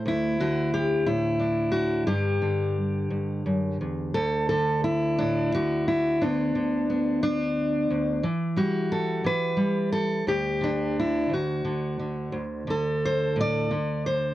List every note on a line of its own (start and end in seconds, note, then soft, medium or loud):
0.00 0.40 A3 medium
0.06 2.06 D2 medium
0.06 1.05 E4 medium
0.40 2.06 D3 medium
0.40 0.73 F#4 medium
0.74 1.06 G4 loud
1.06 2.07 A2 medium
1.06 2.07 E4 medium
1.40 2.08 D4 soft
1.72 2.06 F#4 medium
2.07 3.09 G2 medium
2.07 2.41 D3 soft
2.07 2.76 G3 soft
2.07 4.14 G4 medium
2.42 4.49 D3 medium
3.10 3.45 G2 medium
3.46 3.80 F#2 medium
3.81 4.15 E2 medium
4.14 6.20 D2 medium
4.14 4.48 A4 loud
4.49 5.53 D3 medium
4.49 4.84 A4 medium
4.84 5.87 E4 medium
5.18 5.54 A2 medium
5.18 5.53 D4 medium
5.55 6.21 D3 medium
5.55 6.21 F#4 medium
5.88 6.22 E4 medium
6.21 7.89 D2 medium
6.21 6.54 D3 soft
6.21 6.89 B3 soft
6.21 7.22 D4 medium
6.55 8.24 D3 medium
6.90 8.20 B3 soft
7.23 8.24 D4 loud
7.91 8.24 D2 medium
8.23 9.23 E3 medium
8.57 9.55 G3 medium
8.57 9.59 F#4 medium
8.92 9.25 A4 loud
9.24 10.22 E3 medium
9.24 9.92 B4 loud
9.57 10.22 G3 medium
9.92 10.27 A4 loud
10.27 11.29 D2 medium
10.27 10.96 G4 loud
10.61 11.64 D3 medium
10.61 11.32 D4 medium
10.99 11.32 E4 medium
11.30 12.32 D2 medium
11.30 12.36 F#4 medium
11.65 11.99 D3 medium
12.00 12.67 D3 soft
12.32 14.34 D2 medium
12.67 13.70 D3 medium
12.67 13.73 A4 medium
13.05 13.39 C5 loud
13.36 13.71 A2 medium
13.41 14.06 D5 loud
13.71 14.34 D3 medium
14.06 14.34 C5 loud